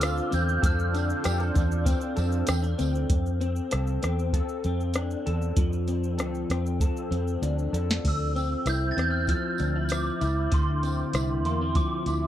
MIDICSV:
0, 0, Header, 1, 6, 480
1, 0, Start_track
1, 0, Key_signature, -1, "major"
1, 0, Tempo, 618557
1, 483, Time_signature, 4, 2, 24, 8
1, 9522, End_track
2, 0, Start_track
2, 0, Title_t, "Glockenspiel"
2, 0, Program_c, 0, 9
2, 0, Note_on_c, 0, 89, 96
2, 264, Note_off_c, 0, 89, 0
2, 264, Note_on_c, 0, 91, 97
2, 500, Note_off_c, 0, 91, 0
2, 508, Note_on_c, 0, 89, 89
2, 943, Note_off_c, 0, 89, 0
2, 6268, Note_on_c, 0, 88, 97
2, 6743, Note_on_c, 0, 91, 85
2, 6750, Note_off_c, 0, 88, 0
2, 6915, Note_on_c, 0, 93, 76
2, 6937, Note_off_c, 0, 91, 0
2, 6989, Note_off_c, 0, 93, 0
2, 6991, Note_on_c, 0, 91, 84
2, 7062, Note_off_c, 0, 91, 0
2, 7065, Note_on_c, 0, 89, 76
2, 7134, Note_off_c, 0, 89, 0
2, 7136, Note_on_c, 0, 91, 72
2, 7205, Note_off_c, 0, 91, 0
2, 7209, Note_on_c, 0, 89, 91
2, 7656, Note_off_c, 0, 89, 0
2, 7700, Note_on_c, 0, 86, 90
2, 8177, Note_on_c, 0, 84, 88
2, 8186, Note_off_c, 0, 86, 0
2, 8882, Note_off_c, 0, 84, 0
2, 8891, Note_on_c, 0, 84, 82
2, 9125, Note_on_c, 0, 86, 90
2, 9134, Note_off_c, 0, 84, 0
2, 9522, Note_off_c, 0, 86, 0
2, 9522, End_track
3, 0, Start_track
3, 0, Title_t, "Analog synth pad"
3, 0, Program_c, 1, 89
3, 0, Note_on_c, 1, 50, 84
3, 0, Note_on_c, 1, 62, 72
3, 0, Note_on_c, 1, 65, 73
3, 0, Note_on_c, 1, 72, 91
3, 458, Note_off_c, 1, 62, 0
3, 466, Note_off_c, 1, 50, 0
3, 466, Note_off_c, 1, 72, 0
3, 468, Note_off_c, 1, 65, 0
3, 483, Note_on_c, 1, 60, 68
3, 483, Note_on_c, 1, 62, 69
3, 486, Note_on_c, 1, 69, 87
3, 491, Note_on_c, 1, 65, 74
3, 2382, Note_off_c, 1, 60, 0
3, 2382, Note_off_c, 1, 62, 0
3, 2384, Note_off_c, 1, 69, 0
3, 2386, Note_off_c, 1, 65, 0
3, 9522, End_track
4, 0, Start_track
4, 0, Title_t, "Clean electric guitar"
4, 0, Program_c, 2, 27
4, 0, Note_on_c, 2, 50, 99
4, 0, Note_on_c, 2, 60, 67
4, 0, Note_on_c, 2, 69, 66
4, 9, Note_on_c, 2, 65, 64
4, 236, Note_off_c, 2, 60, 0
4, 239, Note_on_c, 2, 60, 61
4, 479, Note_off_c, 2, 69, 0
4, 482, Note_on_c, 2, 69, 80
4, 726, Note_off_c, 2, 65, 0
4, 729, Note_on_c, 2, 62, 63
4, 753, Note_off_c, 2, 60, 0
4, 960, Note_off_c, 2, 69, 0
4, 963, Note_on_c, 2, 67, 67
4, 1083, Note_off_c, 2, 67, 0
4, 1083, Note_on_c, 2, 69, 54
4, 1192, Note_off_c, 2, 62, 0
4, 1195, Note_on_c, 2, 62, 65
4, 1291, Note_off_c, 2, 50, 0
4, 1439, Note_on_c, 2, 60, 77
4, 1667, Note_off_c, 2, 69, 0
4, 1676, Note_on_c, 2, 69, 68
4, 1918, Note_off_c, 2, 62, 0
4, 1921, Note_off_c, 2, 60, 0
4, 1921, Note_on_c, 2, 60, 66
4, 2037, Note_off_c, 2, 60, 0
4, 2037, Note_on_c, 2, 62, 49
4, 2161, Note_on_c, 2, 60, 66
4, 2447, Note_off_c, 2, 62, 0
4, 2640, Note_off_c, 2, 60, 0
4, 2643, Note_on_c, 2, 60, 62
4, 2880, Note_off_c, 2, 69, 0
4, 2883, Note_on_c, 2, 69, 57
4, 3120, Note_off_c, 2, 60, 0
4, 3123, Note_on_c, 2, 60, 60
4, 3362, Note_off_c, 2, 69, 0
4, 3365, Note_on_c, 2, 69, 62
4, 3608, Note_off_c, 2, 60, 0
4, 3611, Note_on_c, 2, 60, 60
4, 3852, Note_on_c, 2, 62, 59
4, 4079, Note_off_c, 2, 69, 0
4, 4082, Note_on_c, 2, 69, 70
4, 4323, Note_on_c, 2, 53, 87
4, 4560, Note_off_c, 2, 60, 0
4, 4563, Note_on_c, 2, 60, 56
4, 4792, Note_off_c, 2, 69, 0
4, 4795, Note_on_c, 2, 69, 58
4, 5043, Note_off_c, 2, 60, 0
4, 5046, Note_on_c, 2, 60, 59
4, 5281, Note_off_c, 2, 69, 0
4, 5284, Note_on_c, 2, 69, 67
4, 5513, Note_off_c, 2, 60, 0
4, 5516, Note_on_c, 2, 60, 60
4, 5758, Note_off_c, 2, 62, 0
4, 5761, Note_on_c, 2, 62, 66
4, 5996, Note_off_c, 2, 69, 0
4, 5999, Note_on_c, 2, 69, 58
4, 6480, Note_off_c, 2, 60, 0
4, 6483, Note_on_c, 2, 60, 53
4, 6506, Note_off_c, 2, 62, 0
4, 6725, Note_on_c, 2, 64, 57
4, 6749, Note_off_c, 2, 53, 0
4, 6957, Note_off_c, 2, 60, 0
4, 6960, Note_on_c, 2, 60, 64
4, 7204, Note_on_c, 2, 53, 63
4, 7445, Note_off_c, 2, 64, 0
4, 7448, Note_on_c, 2, 62, 57
4, 7570, Note_off_c, 2, 62, 0
4, 7570, Note_on_c, 2, 64, 50
4, 7913, Note_off_c, 2, 64, 0
4, 7922, Note_on_c, 2, 64, 65
4, 7945, Note_off_c, 2, 53, 0
4, 8160, Note_on_c, 2, 50, 83
4, 8403, Note_off_c, 2, 60, 0
4, 8406, Note_on_c, 2, 60, 56
4, 8645, Note_off_c, 2, 64, 0
4, 8648, Note_on_c, 2, 64, 66
4, 8715, Note_off_c, 2, 69, 0
4, 8882, Note_off_c, 2, 60, 0
4, 8885, Note_on_c, 2, 58, 59
4, 9009, Note_off_c, 2, 58, 0
4, 9009, Note_on_c, 2, 60, 45
4, 9123, Note_on_c, 2, 53, 66
4, 9364, Note_off_c, 2, 64, 0
4, 9367, Note_on_c, 2, 64, 67
4, 9522, Note_off_c, 2, 50, 0
4, 9522, Note_off_c, 2, 53, 0
4, 9522, Note_off_c, 2, 60, 0
4, 9522, Note_off_c, 2, 64, 0
4, 9522, End_track
5, 0, Start_track
5, 0, Title_t, "Fingered electric bass"
5, 0, Program_c, 3, 33
5, 0, Note_on_c, 3, 38, 100
5, 150, Note_off_c, 3, 38, 0
5, 255, Note_on_c, 3, 40, 89
5, 442, Note_off_c, 3, 40, 0
5, 488, Note_on_c, 3, 41, 99
5, 869, Note_off_c, 3, 41, 0
5, 971, Note_on_c, 3, 41, 86
5, 1159, Note_off_c, 3, 41, 0
5, 1211, Note_on_c, 3, 40, 88
5, 1495, Note_off_c, 3, 40, 0
5, 1687, Note_on_c, 3, 41, 92
5, 1876, Note_off_c, 3, 41, 0
5, 1927, Note_on_c, 3, 40, 82
5, 2117, Note_off_c, 3, 40, 0
5, 2169, Note_on_c, 3, 38, 82
5, 2358, Note_off_c, 3, 38, 0
5, 2403, Note_on_c, 3, 41, 103
5, 2786, Note_off_c, 3, 41, 0
5, 2894, Note_on_c, 3, 36, 92
5, 3081, Note_off_c, 3, 36, 0
5, 3132, Note_on_c, 3, 40, 87
5, 3416, Note_off_c, 3, 40, 0
5, 3605, Note_on_c, 3, 41, 85
5, 3988, Note_off_c, 3, 41, 0
5, 4089, Note_on_c, 3, 40, 75
5, 4278, Note_off_c, 3, 40, 0
5, 4320, Note_on_c, 3, 41, 112
5, 4800, Note_off_c, 3, 41, 0
5, 4800, Note_on_c, 3, 38, 85
5, 4993, Note_off_c, 3, 38, 0
5, 5042, Note_on_c, 3, 41, 85
5, 5331, Note_off_c, 3, 41, 0
5, 5516, Note_on_c, 3, 41, 86
5, 5711, Note_off_c, 3, 41, 0
5, 5759, Note_on_c, 3, 38, 88
5, 5953, Note_off_c, 3, 38, 0
5, 5998, Note_on_c, 3, 41, 81
5, 6192, Note_off_c, 3, 41, 0
5, 6241, Note_on_c, 3, 38, 104
5, 6626, Note_off_c, 3, 38, 0
5, 6716, Note_on_c, 3, 36, 91
5, 6911, Note_off_c, 3, 36, 0
5, 6960, Note_on_c, 3, 40, 82
5, 7250, Note_off_c, 3, 40, 0
5, 7449, Note_on_c, 3, 38, 95
5, 7831, Note_off_c, 3, 38, 0
5, 7926, Note_on_c, 3, 37, 88
5, 8117, Note_off_c, 3, 37, 0
5, 8166, Note_on_c, 3, 38, 86
5, 8549, Note_off_c, 3, 38, 0
5, 8642, Note_on_c, 3, 36, 76
5, 8875, Note_off_c, 3, 36, 0
5, 8875, Note_on_c, 3, 40, 85
5, 9167, Note_off_c, 3, 40, 0
5, 9360, Note_on_c, 3, 38, 89
5, 9522, Note_off_c, 3, 38, 0
5, 9522, End_track
6, 0, Start_track
6, 0, Title_t, "Drums"
6, 8, Note_on_c, 9, 54, 76
6, 9, Note_on_c, 9, 42, 67
6, 9, Note_on_c, 9, 82, 66
6, 24, Note_on_c, 9, 37, 109
6, 85, Note_off_c, 9, 54, 0
6, 87, Note_off_c, 9, 42, 0
6, 87, Note_off_c, 9, 82, 0
6, 101, Note_off_c, 9, 37, 0
6, 136, Note_on_c, 9, 82, 49
6, 213, Note_off_c, 9, 82, 0
6, 251, Note_on_c, 9, 42, 49
6, 251, Note_on_c, 9, 82, 56
6, 255, Note_on_c, 9, 54, 57
6, 328, Note_off_c, 9, 42, 0
6, 328, Note_off_c, 9, 82, 0
6, 333, Note_off_c, 9, 54, 0
6, 378, Note_on_c, 9, 82, 49
6, 455, Note_off_c, 9, 82, 0
6, 489, Note_on_c, 9, 36, 108
6, 490, Note_on_c, 9, 54, 28
6, 493, Note_on_c, 9, 42, 82
6, 493, Note_on_c, 9, 82, 76
6, 566, Note_off_c, 9, 36, 0
6, 568, Note_off_c, 9, 54, 0
6, 571, Note_off_c, 9, 42, 0
6, 571, Note_off_c, 9, 82, 0
6, 616, Note_on_c, 9, 82, 47
6, 693, Note_off_c, 9, 82, 0
6, 733, Note_on_c, 9, 42, 48
6, 733, Note_on_c, 9, 82, 49
6, 748, Note_on_c, 9, 54, 48
6, 811, Note_off_c, 9, 42, 0
6, 811, Note_off_c, 9, 82, 0
6, 825, Note_off_c, 9, 54, 0
6, 852, Note_on_c, 9, 82, 59
6, 930, Note_off_c, 9, 82, 0
6, 963, Note_on_c, 9, 42, 62
6, 963, Note_on_c, 9, 82, 58
6, 973, Note_on_c, 9, 37, 81
6, 975, Note_on_c, 9, 54, 75
6, 1040, Note_off_c, 9, 42, 0
6, 1040, Note_off_c, 9, 82, 0
6, 1050, Note_off_c, 9, 37, 0
6, 1053, Note_off_c, 9, 54, 0
6, 1082, Note_on_c, 9, 82, 43
6, 1160, Note_off_c, 9, 82, 0
6, 1207, Note_on_c, 9, 42, 51
6, 1207, Note_on_c, 9, 82, 50
6, 1210, Note_on_c, 9, 36, 84
6, 1223, Note_on_c, 9, 54, 30
6, 1284, Note_off_c, 9, 42, 0
6, 1284, Note_off_c, 9, 82, 0
6, 1288, Note_off_c, 9, 36, 0
6, 1300, Note_off_c, 9, 54, 0
6, 1331, Note_on_c, 9, 82, 59
6, 1408, Note_off_c, 9, 82, 0
6, 1439, Note_on_c, 9, 36, 89
6, 1447, Note_on_c, 9, 42, 74
6, 1447, Note_on_c, 9, 82, 74
6, 1457, Note_on_c, 9, 54, 41
6, 1517, Note_off_c, 9, 36, 0
6, 1524, Note_off_c, 9, 42, 0
6, 1524, Note_off_c, 9, 82, 0
6, 1535, Note_off_c, 9, 54, 0
6, 1560, Note_on_c, 9, 82, 55
6, 1637, Note_off_c, 9, 82, 0
6, 1681, Note_on_c, 9, 42, 44
6, 1681, Note_on_c, 9, 82, 44
6, 1694, Note_on_c, 9, 54, 48
6, 1759, Note_off_c, 9, 42, 0
6, 1759, Note_off_c, 9, 82, 0
6, 1771, Note_off_c, 9, 54, 0
6, 1801, Note_on_c, 9, 82, 51
6, 1879, Note_off_c, 9, 82, 0
6, 1915, Note_on_c, 9, 42, 68
6, 1915, Note_on_c, 9, 82, 64
6, 1926, Note_on_c, 9, 54, 80
6, 1929, Note_on_c, 9, 37, 96
6, 1992, Note_off_c, 9, 42, 0
6, 1992, Note_off_c, 9, 82, 0
6, 2004, Note_off_c, 9, 54, 0
6, 2007, Note_off_c, 9, 37, 0
6, 2044, Note_on_c, 9, 82, 47
6, 2122, Note_off_c, 9, 82, 0
6, 2164, Note_on_c, 9, 42, 51
6, 2164, Note_on_c, 9, 82, 54
6, 2176, Note_on_c, 9, 54, 54
6, 2242, Note_off_c, 9, 42, 0
6, 2242, Note_off_c, 9, 82, 0
6, 2254, Note_off_c, 9, 54, 0
6, 2291, Note_on_c, 9, 82, 48
6, 2368, Note_off_c, 9, 82, 0
6, 2403, Note_on_c, 9, 42, 73
6, 2403, Note_on_c, 9, 82, 68
6, 2404, Note_on_c, 9, 36, 98
6, 2480, Note_off_c, 9, 42, 0
6, 2480, Note_off_c, 9, 82, 0
6, 2481, Note_off_c, 9, 36, 0
6, 2531, Note_on_c, 9, 82, 42
6, 2608, Note_off_c, 9, 82, 0
6, 2648, Note_on_c, 9, 42, 49
6, 2648, Note_on_c, 9, 82, 47
6, 2726, Note_off_c, 9, 42, 0
6, 2726, Note_off_c, 9, 82, 0
6, 2762, Note_on_c, 9, 82, 53
6, 2840, Note_off_c, 9, 82, 0
6, 2881, Note_on_c, 9, 42, 65
6, 2881, Note_on_c, 9, 82, 58
6, 2891, Note_on_c, 9, 37, 81
6, 2958, Note_off_c, 9, 42, 0
6, 2958, Note_off_c, 9, 82, 0
6, 2968, Note_off_c, 9, 37, 0
6, 3003, Note_on_c, 9, 82, 44
6, 3081, Note_off_c, 9, 82, 0
6, 3125, Note_on_c, 9, 42, 55
6, 3125, Note_on_c, 9, 82, 53
6, 3134, Note_on_c, 9, 37, 80
6, 3202, Note_off_c, 9, 42, 0
6, 3202, Note_off_c, 9, 82, 0
6, 3212, Note_off_c, 9, 37, 0
6, 3252, Note_on_c, 9, 82, 50
6, 3330, Note_off_c, 9, 82, 0
6, 3359, Note_on_c, 9, 36, 78
6, 3366, Note_on_c, 9, 42, 66
6, 3366, Note_on_c, 9, 82, 62
6, 3437, Note_off_c, 9, 36, 0
6, 3444, Note_off_c, 9, 42, 0
6, 3444, Note_off_c, 9, 82, 0
6, 3482, Note_on_c, 9, 82, 48
6, 3560, Note_off_c, 9, 82, 0
6, 3601, Note_on_c, 9, 42, 46
6, 3601, Note_on_c, 9, 82, 44
6, 3679, Note_off_c, 9, 42, 0
6, 3679, Note_off_c, 9, 82, 0
6, 3729, Note_on_c, 9, 82, 41
6, 3806, Note_off_c, 9, 82, 0
6, 3831, Note_on_c, 9, 42, 62
6, 3831, Note_on_c, 9, 82, 56
6, 3846, Note_on_c, 9, 37, 95
6, 3909, Note_off_c, 9, 42, 0
6, 3909, Note_off_c, 9, 82, 0
6, 3923, Note_off_c, 9, 37, 0
6, 3962, Note_on_c, 9, 82, 47
6, 4040, Note_off_c, 9, 82, 0
6, 4087, Note_on_c, 9, 42, 45
6, 4087, Note_on_c, 9, 82, 45
6, 4165, Note_off_c, 9, 42, 0
6, 4165, Note_off_c, 9, 82, 0
6, 4205, Note_on_c, 9, 82, 45
6, 4283, Note_off_c, 9, 82, 0
6, 4319, Note_on_c, 9, 42, 69
6, 4319, Note_on_c, 9, 82, 67
6, 4320, Note_on_c, 9, 36, 111
6, 4397, Note_off_c, 9, 42, 0
6, 4397, Note_off_c, 9, 82, 0
6, 4398, Note_off_c, 9, 36, 0
6, 4444, Note_on_c, 9, 82, 47
6, 4522, Note_off_c, 9, 82, 0
6, 4560, Note_on_c, 9, 42, 41
6, 4560, Note_on_c, 9, 82, 48
6, 4638, Note_off_c, 9, 42, 0
6, 4638, Note_off_c, 9, 82, 0
6, 4684, Note_on_c, 9, 82, 47
6, 4761, Note_off_c, 9, 82, 0
6, 4800, Note_on_c, 9, 42, 58
6, 4800, Note_on_c, 9, 82, 56
6, 4810, Note_on_c, 9, 37, 81
6, 4878, Note_off_c, 9, 42, 0
6, 4878, Note_off_c, 9, 82, 0
6, 4888, Note_off_c, 9, 37, 0
6, 4924, Note_on_c, 9, 82, 41
6, 5002, Note_off_c, 9, 82, 0
6, 5044, Note_on_c, 9, 42, 50
6, 5044, Note_on_c, 9, 82, 57
6, 5054, Note_on_c, 9, 37, 78
6, 5122, Note_off_c, 9, 42, 0
6, 5122, Note_off_c, 9, 82, 0
6, 5131, Note_off_c, 9, 37, 0
6, 5169, Note_on_c, 9, 82, 50
6, 5247, Note_off_c, 9, 82, 0
6, 5279, Note_on_c, 9, 36, 89
6, 5285, Note_on_c, 9, 42, 59
6, 5285, Note_on_c, 9, 82, 64
6, 5356, Note_off_c, 9, 36, 0
6, 5362, Note_off_c, 9, 42, 0
6, 5362, Note_off_c, 9, 82, 0
6, 5406, Note_on_c, 9, 82, 47
6, 5484, Note_off_c, 9, 82, 0
6, 5526, Note_on_c, 9, 42, 44
6, 5526, Note_on_c, 9, 82, 40
6, 5604, Note_off_c, 9, 42, 0
6, 5604, Note_off_c, 9, 82, 0
6, 5646, Note_on_c, 9, 82, 44
6, 5724, Note_off_c, 9, 82, 0
6, 5764, Note_on_c, 9, 42, 58
6, 5764, Note_on_c, 9, 82, 63
6, 5841, Note_off_c, 9, 42, 0
6, 5841, Note_off_c, 9, 82, 0
6, 5887, Note_on_c, 9, 82, 44
6, 5964, Note_off_c, 9, 82, 0
6, 6008, Note_on_c, 9, 42, 45
6, 6008, Note_on_c, 9, 82, 49
6, 6085, Note_off_c, 9, 42, 0
6, 6085, Note_off_c, 9, 82, 0
6, 6131, Note_on_c, 9, 82, 46
6, 6136, Note_on_c, 9, 38, 87
6, 6209, Note_off_c, 9, 82, 0
6, 6214, Note_off_c, 9, 38, 0
6, 6244, Note_on_c, 9, 36, 96
6, 6245, Note_on_c, 9, 42, 62
6, 6245, Note_on_c, 9, 49, 87
6, 6321, Note_off_c, 9, 36, 0
6, 6322, Note_off_c, 9, 49, 0
6, 6323, Note_off_c, 9, 42, 0
6, 6490, Note_on_c, 9, 42, 42
6, 6496, Note_on_c, 9, 54, 40
6, 6568, Note_off_c, 9, 42, 0
6, 6574, Note_off_c, 9, 54, 0
6, 6719, Note_on_c, 9, 42, 55
6, 6724, Note_on_c, 9, 54, 68
6, 6729, Note_on_c, 9, 37, 78
6, 6796, Note_off_c, 9, 42, 0
6, 6801, Note_off_c, 9, 54, 0
6, 6806, Note_off_c, 9, 37, 0
6, 6968, Note_on_c, 9, 42, 49
6, 6977, Note_on_c, 9, 37, 66
6, 7045, Note_off_c, 9, 42, 0
6, 7055, Note_off_c, 9, 37, 0
6, 7196, Note_on_c, 9, 54, 38
6, 7200, Note_on_c, 9, 36, 74
6, 7207, Note_on_c, 9, 42, 60
6, 7273, Note_off_c, 9, 54, 0
6, 7278, Note_off_c, 9, 36, 0
6, 7285, Note_off_c, 9, 42, 0
6, 7434, Note_on_c, 9, 54, 47
6, 7447, Note_on_c, 9, 42, 45
6, 7512, Note_off_c, 9, 54, 0
6, 7524, Note_off_c, 9, 42, 0
6, 7671, Note_on_c, 9, 54, 79
6, 7682, Note_on_c, 9, 42, 67
6, 7696, Note_on_c, 9, 37, 83
6, 7749, Note_off_c, 9, 54, 0
6, 7760, Note_off_c, 9, 42, 0
6, 7774, Note_off_c, 9, 37, 0
6, 7924, Note_on_c, 9, 54, 50
6, 7926, Note_on_c, 9, 42, 47
6, 8002, Note_off_c, 9, 54, 0
6, 8004, Note_off_c, 9, 42, 0
6, 8161, Note_on_c, 9, 42, 64
6, 8164, Note_on_c, 9, 36, 100
6, 8171, Note_on_c, 9, 54, 27
6, 8238, Note_off_c, 9, 42, 0
6, 8242, Note_off_c, 9, 36, 0
6, 8249, Note_off_c, 9, 54, 0
6, 8405, Note_on_c, 9, 42, 39
6, 8417, Note_on_c, 9, 54, 43
6, 8482, Note_off_c, 9, 42, 0
6, 8494, Note_off_c, 9, 54, 0
6, 8640, Note_on_c, 9, 42, 55
6, 8649, Note_on_c, 9, 54, 72
6, 8650, Note_on_c, 9, 37, 87
6, 8718, Note_off_c, 9, 42, 0
6, 8726, Note_off_c, 9, 54, 0
6, 8728, Note_off_c, 9, 37, 0
6, 8886, Note_on_c, 9, 42, 53
6, 8895, Note_on_c, 9, 54, 29
6, 8964, Note_off_c, 9, 42, 0
6, 8972, Note_off_c, 9, 54, 0
6, 9119, Note_on_c, 9, 36, 88
6, 9119, Note_on_c, 9, 42, 60
6, 9129, Note_on_c, 9, 54, 38
6, 9197, Note_off_c, 9, 36, 0
6, 9197, Note_off_c, 9, 42, 0
6, 9207, Note_off_c, 9, 54, 0
6, 9360, Note_on_c, 9, 42, 49
6, 9370, Note_on_c, 9, 54, 44
6, 9437, Note_off_c, 9, 42, 0
6, 9448, Note_off_c, 9, 54, 0
6, 9522, End_track
0, 0, End_of_file